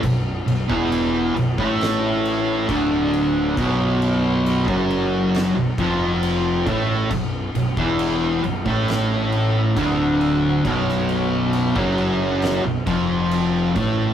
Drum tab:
CC |x-x-x-x-x-x-x-x-|x-x-x-x-x-x-x-x-|x-x-x-x-x-x-x-x-|x-x-x-x-x-x-x-x-|
SD |--------o-------|--------o-------|--------o-------|-o------o-------|
BD |o--o---o----o---|o----o----o---o-|o--o---o----o---|o----o----o---o-|